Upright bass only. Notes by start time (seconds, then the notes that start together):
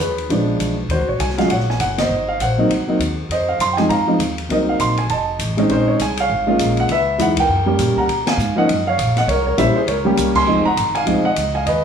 0.00 D#2
0.30 A#1
0.59 B1
0.88 D#2
0.99 C#2
1.08 A#1
1.19 C2
1.49 A#1
1.79 F#1
2.09 G#1
2.39 A#1
2.69 C2
2.88 muted upright bass stroke
2.99 D#2
3.29 F2
3.58 F#2
3.89 G#2
4.19 D#2
4.49 C2
4.79 A#1
5.09 F1
5.39 A1
5.69 A#1
5.99 C2
6.29 G#1
6.58 A#1
6.89 C#2
7.19 E2
7.48 F#2
7.78 A#2
7.96 muted upright bass stroke
8.08 B2
8.37 G#2
8.68 F#2
8.98 A#1
9.27 C2
9.57 A#1
9.75 muted upright bass stroke
9.87 C#2
10.18 C2
10.47 F1
10.77 G#1
11.07 C2
11.24 muted upright bass stroke
11.36 C#2
11.66 D#2